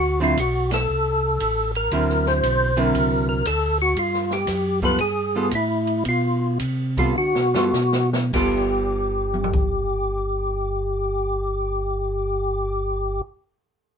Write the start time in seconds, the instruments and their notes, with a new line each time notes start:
Already playing: tonewheel organ D2 F#4
0.20 hollow-body jazz guitar D3 F#3 C4 E4, tonewheel organ F4
0.37 tonewheel organ B1 F#4, kick, hi-hat pedal, ride
0.71 tonewheel organ A4, snare, ride
0.89 tonewheel organ C2
1.40 tonewheel organ A1, kick, hi-hat pedal, ride
1.75 tonewheel organ A#4, ride
1.91 tonewheel organ D2, hollow-body jazz guitar D3 F#3 C4 E4, kick, ride
2.09 snare
2.26 tonewheel organ C5, snare
2.43 tonewheel organ B1, kick, hi-hat pedal, ride
2.76 hollow-body jazz guitar D3 F#3 C4 E4, tonewheel organ A#4, ride
2.94 tonewheel organ C2, kick, ride
3.29 tonewheel organ A#4
3.45 tonewheel organ D2 A4, kick, hi-hat pedal, ride
3.82 tonewheel organ F#4
3.96 tonewheel organ G2 F4, kick, ride
4.14 snare
4.30 tonewheel organ G4, snare
4.47 tonewheel organ F#2, kick, snare, hi-hat pedal, ride
4.82 hollow-body jazz guitar G3 B3 F4 A4, tonewheel organ B4, kick
4.98 tonewheel organ G2 G#4, kick, ride
5.35 hollow-body jazz guitar G3 B3 F4 A4
5.51 tonewheel organ A2 E4, kick, hi-hat pedal, ride
5.87 ride
6.05 tonewheel organ B2 F4, kick, ride
6.59 tonewheel organ C3, kick, hi-hat pedal, ride
6.97 hollow-body jazz guitar G3 B3 F4 A4, tonewheel organ F4, kick, ride
7.16 tonewheel organ D3 F#4
7.35 tonewheel organ B2, snare
7.54 tonewheel organ G2, hollow-body jazz guitar G3 B3 F4 A4, snare
7.73 tonewheel organ B2, snare, hi-hat pedal
7.92 snare
8.13 snare
8.33 tonewheel organ G1 G4, hollow-body jazz guitar G3 B3 F4 A4, kick, crash
9.34 mid tom
9.44 floor tom
9.54 kick